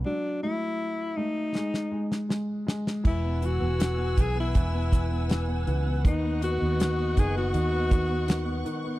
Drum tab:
CC |----------------|x---------------|----------------|
HH |----------------|--x-x-x-x-x-x-x-|x-x-x-x-x-x-x-x-|
SD |--------oo-oo-oo|----o-------o---|----o-------o---|
BD |----------------|o-----o-o-o-----|o-----o---o-----|